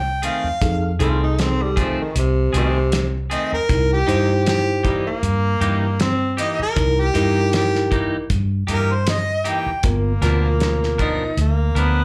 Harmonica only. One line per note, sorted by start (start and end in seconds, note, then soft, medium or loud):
0.00 0.23 G5 medium
0.25 0.99 F5 medium
3.33 3.52 D#5 medium
3.54 3.90 A#4 medium
3.93 4.46 G4 medium
4.49 4.85 G4 loud
6.41 6.59 D#5 medium
6.62 7.01 A#4 loud
7.00 7.53 G4 loud
7.55 7.92 G4 loud
8.71 8.94 A#4 medium
8.92 9.07 C5 medium
9.10 9.50 D#5 medium
9.49 9.84 G5 medium